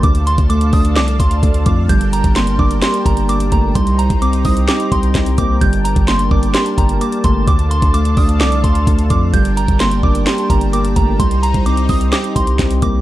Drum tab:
HH |xxxxxxoxxxxxxxx-|xxxxxx-xxxxxxxx-|xxxxxxoxxxxxxxx-|xxxxxx-xxxxxxxx-|
CP |--------x-------|----x---x-------|--------x---x---|----x---x-------|
SD |--------o-------|----o---o-------|--------o---o---|----o---o-------|
BD |o--o--o---o-o-o-|o--o--o---o---o-|o--o--o---o-o-o-|o--o--o---o---o-|

HH |xxxxxxoxxxxxxxx-|xxxxxx-xxxxxxxx-|xxxxxxoxxxxxxxx-|
CP |--------x-------|----x---x-------|--------x---x---|
SD |--------o-------|----o---o-------|--------o---o---|
BD |o--o--o---o-o-o-|o--o--o---o---o-|o--o--o---o-o-o-|